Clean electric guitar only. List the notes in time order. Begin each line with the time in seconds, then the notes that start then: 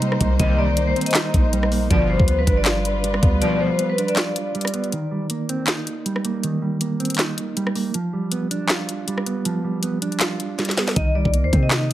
Already playing: A#3 D#4
0.02 G3
0.21 A#3
0.40 D#3
0.58 G3
0.77 A#3
0.96 C4
1.15 D#4
1.53 G3
1.72 A#3
1.91 F3
2.09 G3
2.28 B3
2.47 D4
2.66 F4
3.04 G3
3.23 B3
3.42 F3
3.61 G3
3.79 B3
3.98 D4
4.17 F4
4.55 G3
4.74 B3
4.93 D#3
5.11 G3
5.30 A#3
5.49 C4
5.68 D#4
6.06 G3
6.25 A#3
6.44 D#3
6.62 G3
6.81 A#3
7.00 C4
7.19 D#4
7.57 G3
7.76 A#3
7.95 F3
8.13 G3
8.32 B3
8.51 D4
8.70 F4
9.08 G3
9.26 B3
9.45 F3
9.64 G3
9.83 B3
10.02 D4
10.21 F4
10.59 G3
10.78 B3
10.97 D#3
11.15 G3
11.34 A#3
11.53 C4
11.72 D#4